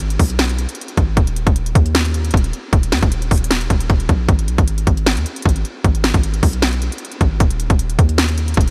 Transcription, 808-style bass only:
Already playing: G#1
0.20 B1
0.97 G#1
1.17 D#1
1.47 D#1
1.75 D#2
2.34 D#1
2.73 D#1
2.92 D#2
3.03 D#1
3.31 D#1
3.70 D#1
3.90 D#1
4.09 A#1
4.29 G#1
4.48 B1
4.58 G#1
4.87 G#1
5.17 D#2
5.46 G#1
5.84 G#1
6.14 G#1
6.43 B1
7.21 G#1
7.40 D#1
7.70 D#1
7.99 D#2
8.57 D#1

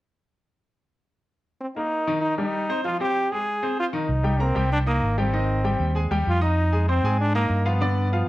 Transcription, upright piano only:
1.76 A#3 A#4
2.07 D#3 D#4
2.38 G3 G4
2.69 C4 C5
2.85 F3 F4
3.00 C4 C5
3.32 G#3 G#4
3.63 C4 C5
3.93 D#3 D#4
4.23 G3 G4 G5
4.40 A#3 A#4 A#5
4.55 G3 G4 G5
4.86 D#4 D#5 D#6
5.18 G3 G4 G5
5.33 D#3 D#4 D#5
5.64 G3 G4 G5
5.95 G#3 G#4 G#5
6.11 G3 G4 G5
6.41 D#4 D#5 D#6
6.73 G#3 G#4 G#5
6.88 C4 C5 C6
7.04 G#3 G#4 G#5
7.34 D#4 D#5 D#6
7.65 F3 F4 F5
7.81 D3 D4 D5
8.12 F3 F4 F5

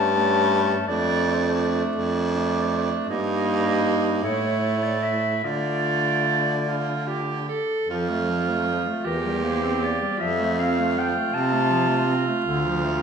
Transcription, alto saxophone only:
Already playing: C#4
0.15 C#4
0.88 D4
1.26 D4
2.35 D4
3.09 D#4
4.23 E4
5.44 F4
6.67 F4
7.07 G4
7.48 A4
7.90 F4
9.05 G4
10.18 F4

